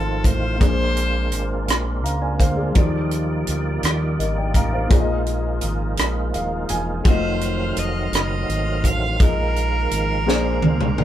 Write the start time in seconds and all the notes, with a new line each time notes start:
Already playing: G#1 D#3 F3 A3 C4 D#4 F4 A4 C5
0.24 A1 C5, kick, closed hi-hat
0.58 A#1 A#2 A#3 D4 G#4, kick, closed hi-hat
0.62 G#3 C4 C5
0.97 closed hi-hat
1.32 G#1, closed hi-hat
1.68 A#1, cross-stick, closed hi-hat
2.04 C#2 F5 A#5, closed hi-hat
2.21 D5 G#5
2.40 D2 C5 F5, kick, closed hi-hat
2.57 G#4 D5
2.72 D#2 F3 F#3 G3 D#4 F4 D5, kick, closed hi-hat
2.78 G3 D5
3.11 closed hi-hat
3.47 D2, closed hi-hat
3.83 D#2, cross-stick, closed hi-hat
4.19 G#1 A#4 D#5, closed hi-hat
4.37 D5 G5
4.54 A1 F5 A#5, kick, closed hi-hat
4.73 C5 F5
4.88 A#1 A#2 F3 G#3 A#3 F4, kick, closed hi-hat
4.92 G#4 D5
5.00 D#5
5.26 closed hi-hat
5.61 G#1, closed hi-hat
5.97 A#1, cross-stick, closed hi-hat
6.34 D#1 F5, closed hi-hat
6.69 E1 G#5, closed hi-hat
7.02 F1 D#3 F#3 G#3 A3 C4 F4 F5, kick, closed hi-hat
7.07 A3 F#4 C5 D#5
7.41 closed hi-hat
7.76 F1 D#5, closed hi-hat
8.12 F#1 D#5, cross-stick, closed hi-hat
8.48 G#1, closed hi-hat
8.84 A1 F5, kick, closed hi-hat
9.19 A#1 A#2 F3 G#3 A#3 F4 G#4 A#4 D#5, kick, closed hi-hat
9.56 closed hi-hat
9.91 G#1, closed hi-hat
10.26 A#1 A#2 G#3 A#3 C4 D4 G#4 C5, snare
10.62 C#2, high tom
10.81 mid tom
10.98 D2, mid tom